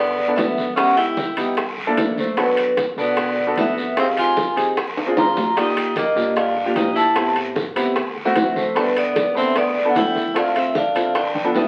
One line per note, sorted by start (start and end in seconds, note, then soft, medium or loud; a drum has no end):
0.00 0.34 G2 medium
0.00 0.13 B3 medium
0.00 0.33 B3 medium
0.00 0.13 D4 medium
0.00 0.13 E4 medium
0.00 0.13 A4 medium
0.00 0.39 D5 medium
0.18 high bongo soft
0.18 high conga soft
0.28 0.63 B3 medium
0.28 0.63 D4 medium
0.28 0.63 E4 medium
0.28 0.63 A4 medium
0.36 1.31 C#2 medium
0.36 0.74 B3 medium
0.36 0.78 E5 loud
0.36 high bongo soft
0.36 low bongo medium
0.36 high conga medium
0.36 high timbale medium
0.36 low timbale medium
0.36 short guiro medium
0.57 high bongo soft
0.57 high conga medium
0.57 short guiro medium
0.76 1.20 B3 medium
0.76 0.95 C#4 medium
0.76 1.20 D#4 medium
0.76 1.20 E4 medium
0.76 1.20 G4 medium
0.76 0.96 F#5 medium
0.76 high bongo medium
0.76 high conga soft
0.76 high timbale medium
0.76 long guiro medium
0.97 1.53 E4 medium
0.97 1.53 G5 medium
0.97 high bongo soft
0.97 high conga soft
0.97 high timbale medium
1.17 high bongo medium
1.17 high conga medium
1.17 low timbale medium
1.17 short guiro medium
1.37 1.93 C2 medium
1.37 1.57 B3 medium
1.37 1.58 D#4 medium
1.37 1.58 E4 medium
1.37 1.58 G4 medium
1.37 high conga soft
1.37 high timbale medium
1.37 short guiro medium
1.57 high bongo medium
1.57 high conga soft
1.57 high timbale medium
1.57 long guiro medium
1.77 high bongo soft
1.77 high conga soft
1.87 2.22 A#3 medium
1.87 2.22 D4 medium
1.87 2.22 E4 medium
1.87 2.22 A4 medium
1.97 2.91 B1 medium
1.97 high bongo soft
1.97 low bongo medium
1.97 high conga medium
1.97 high timbale medium
1.97 low timbale medium
1.97 short guiro medium
2.17 2.36 A3 medium
2.17 2.37 C5 medium
2.17 high bongo soft
2.17 high conga medium
2.17 short guiro medium
2.37 2.75 F#3 medium
2.37 2.79 B3 medium
2.37 2.79 D4 medium
2.37 2.79 F#4 medium
2.37 2.79 A4 medium
2.37 2.76 B4 medium
2.37 high bongo medium
2.37 high conga soft
2.37 high timbale medium
2.37 long guiro medium
2.57 high bongo soft
2.57 high conga soft
2.57 high timbale medium
2.77 high bongo medium
2.77 high conga loud
2.77 high timbale medium
2.77 low timbale medium
2.77 short guiro medium
2.96 3.53 B2 medium
2.96 3.32 B3 medium
2.96 3.55 B3 medium
2.96 3.32 D4 medium
2.96 3.32 F#4 medium
2.96 3.33 A4 medium
2.96 3.60 D5 medium
2.96 high conga soft
2.96 short guiro medium
3.17 high bongo medium
3.17 high conga soft
3.17 high timbale medium
3.17 long guiro medium
3.38 high bongo soft
3.38 high conga soft
3.47 3.82 B3 medium
3.47 3.82 D4 medium
3.47 3.82 F#4 medium
3.47 3.82 A4 medium
3.57 4.51 F2 medium
3.57 3.95 B3 medium
3.57 3.96 E5 loud
3.57 high bongo soft
3.57 low bongo medium
3.57 high conga medium
3.57 high timbale medium
3.57 low timbale medium
3.57 short guiro medium
3.78 high bongo soft
3.78 short guiro medium
3.97 4.39 C4 medium
3.97 4.08 C4 medium
3.97 4.39 D#4 medium
3.97 4.39 G4 medium
3.97 4.39 G#4 medium
3.97 4.08 F5 medium
3.97 high bongo medium
3.97 high conga soft
3.97 high timbale medium
3.97 long guiro medium
4.17 4.74 F4 medium
4.17 4.74 G#5 medium
4.17 high bongo soft
4.17 high conga soft
4.17 high timbale medium
4.37 high bongo medium
4.37 high conga loud
4.37 low timbale medium
4.37 short guiro medium
4.56 5.13 A#1 loud
4.56 4.76 C4 medium
4.56 4.77 D#4 medium
4.56 4.77 G4 medium
4.56 4.77 G#4 medium
4.56 high conga soft
4.56 high timbale medium
4.56 short guiro medium
4.77 high bongo medium
4.77 high conga soft
4.77 high timbale medium
4.77 long guiro medium
4.97 high bongo soft
4.97 high conga soft
4.97 high timbale medium
5.06 5.41 C4 medium
5.06 5.42 D4 medium
5.06 5.42 F4 medium
5.06 5.42 G#4 medium
5.16 6.10 D#2 medium
5.16 5.55 F4 medium
5.16 5.55 A#5 loud
5.16 high bongo soft
5.16 low bongo medium
5.16 high conga medium
5.16 high timbale medium
5.16 short guiro medium
5.37 high bongo soft
5.37 high conga medium
5.37 low timbale medium
5.37 short guiro medium
5.56 5.98 A#3 medium
5.56 5.94 D#4 medium
5.56 5.98 F4 medium
5.56 5.99 G4 medium
5.56 5.99 D5 medium
5.56 5.94 G5 medium
5.56 high bongo medium
5.56 high conga soft
5.56 high timbale medium
5.56 long guiro medium
5.76 high bongo soft
5.76 high conga soft
5.76 high timbale loud
5.96 6.34 A#3 medium
5.96 6.38 D#5 medium
5.96 high bongo soft
5.96 high conga medium
5.96 high timbale medium
5.96 low timbale medium
5.96 short guiro medium
6.16 6.72 G2 medium
6.16 6.51 A#3 medium
6.16 6.51 D4 medium
6.16 6.51 F4 medium
6.16 6.51 G4 medium
6.16 high conga soft
6.16 short guiro medium
6.36 6.73 D4 medium
6.36 6.73 F5 medium
6.36 high bongo medium
6.36 high conga soft
6.36 high timbale medium
6.36 long guiro medium
6.56 high bongo soft
6.56 high conga soft
6.66 7.01 A#3 medium
6.66 7.01 D4 medium
6.66 7.01 F4 medium
6.66 7.01 G4 medium
6.76 7.70 A2 loud
6.76 6.95 D#4 medium
6.76 6.97 G5 loud
6.76 high bongo soft
6.76 low bongo medium
6.76 high conga medium
6.76 high timbale medium
6.76 low timbale medium
6.76 short guiro medium
6.96 7.33 E4 medium
6.96 7.34 A5 medium
6.96 high bongo soft
6.96 short guiro medium
7.15 7.58 B3 medium
7.15 7.58 C4 medium
7.15 7.58 E4 medium
7.15 7.58 G4 medium
7.15 high bongo medium
7.15 high conga soft
7.15 high timbale medium
7.15 long guiro medium
7.36 high bongo soft
7.36 high conga soft
7.36 high timbale medium
7.55 high bongo medium
7.55 high conga loud
7.55 low timbale medium
7.55 short guiro medium
7.76 8.32 D2 loud
7.76 7.96 B3 medium
7.76 7.96 C4 medium
7.76 7.96 E4 medium
7.76 7.96 G4 medium
7.76 high conga soft
7.76 high timbale medium
7.76 short guiro medium
7.96 high bongo medium
7.96 high conga soft
7.96 high timbale medium
7.96 long guiro medium
8.15 high bongo soft
8.15 high conga soft
8.25 8.60 A3 medium
8.25 8.60 C4 medium
8.25 8.61 E4 medium
8.25 8.61 F#4 loud
8.36 9.30 G1 medium
8.36 high bongo soft
8.36 low bongo medium
8.36 high conga medium
8.36 high timbale medium
8.36 low timbale medium
8.36 short guiro medium
8.56 8.75 A3 medium
8.56 8.77 C5 medium
8.56 high bongo soft
8.56 high conga medium
8.56 short guiro medium
8.75 8.95 G3 medium
8.75 9.17 B3 medium
8.75 9.18 D4 medium
8.75 9.18 E4 medium
8.75 9.18 A4 medium
8.75 8.95 B4 medium
8.75 high bongo medium
8.75 high conga soft
8.75 high timbale medium
8.75 long guiro medium
8.96 9.33 B3 medium
8.96 9.34 D5 medium
8.96 high bongo soft
8.96 high conga soft
8.96 high timbale medium
9.16 high bongo medium
9.16 high conga loud
9.16 high timbale medium
9.16 low timbale medium
9.16 short guiro medium
9.35 9.91 D2 medium
9.35 9.70 B3 medium
9.35 9.55 C4 medium
9.35 9.70 D4 medium
9.35 9.70 E4 medium
9.35 9.71 A4 medium
9.35 9.55 E5 medium
9.35 high conga soft
9.35 short guiro medium
9.56 9.87 B3 medium
9.56 9.87 D5 loud
9.56 high bongo medium
9.56 high conga soft
9.56 high timbale medium
9.56 long guiro medium
9.75 high bongo soft
9.75 high conga soft
9.85 10.20 B3 medium
9.85 10.20 D4 medium
9.85 9.95 D4 medium
9.85 10.20 E4 medium
9.85 10.20 A4 medium
9.89 9.96 F#5 medium
9.95 10.89 D2 medium
9.95 10.33 E4 medium
9.95 10.34 G5 loud
9.95 high bongo soft
9.95 low bongo medium
9.95 high conga medium
9.95 high timbale medium
9.95 low timbale medium
9.95 short guiro medium
10.15 high bongo soft
10.15 high conga medium
10.15 short guiro medium
10.34 10.77 C4 medium
10.34 10.55 D4 medium
10.34 10.77 E4 medium
10.34 10.77 F4 medium
10.34 10.77 A4 medium
10.34 high bongo medium
10.34 high conga soft
10.34 high timbale medium
10.34 long guiro medium
10.38 10.55 F5 medium
10.56 10.75 C4 medium
10.56 10.76 E5 medium
10.56 high bongo soft
10.56 high conga soft
10.56 high timbale medium
10.75 11.13 D4 medium
10.75 11.17 F5 medium
10.75 high bongo medium
10.75 high conga loud
10.75 low timbale medium
10.75 short guiro medium
10.95 11.51 G1 loud
10.95 11.15 C4 medium
10.95 11.15 E4 medium
10.95 11.15 F4 medium
10.95 11.15 A4 medium
10.95 high conga soft
10.95 high timbale medium
10.95 short guiro medium
11.15 11.53 D4 medium
11.15 11.53 G5 medium
11.15 high bongo medium
11.15 high conga soft
11.15 high timbale medium
11.15 long guiro medium
11.35 high bongo soft
11.35 high conga medium
11.35 high timbale medium
11.44 11.68 B3 medium
11.44 11.68 D4 medium
11.44 11.68 F4 medium
11.44 11.68 A4 medium
11.55 11.68 C2 medium
11.55 11.68 B3 medium
11.55 11.68 E5 medium
11.55 high bongo soft
11.55 low bongo medium
11.55 low timbale medium
11.55 short guiro medium